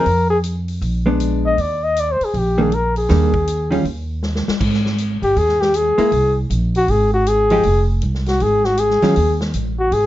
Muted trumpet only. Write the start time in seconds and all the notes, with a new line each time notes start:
Already playing: A#4
0.30 G#4
1.46 D#5
1.61 D5
1.83 D#5
2.00 D5
2.12 C5
2.25 G#4
2.38 G4
2.60 G#4
2.74 A#4
2.98 G#4
5.23 G4
5.38 G#4
5.61 G4
5.76 G#4
6.77 F#4
6.90 G#4
7.14 F#4
7.28 G#4
8.28 F#4
8.42 G#4
8.65 F#4
8.79 G#4
9.79 F#4
9.93 G#4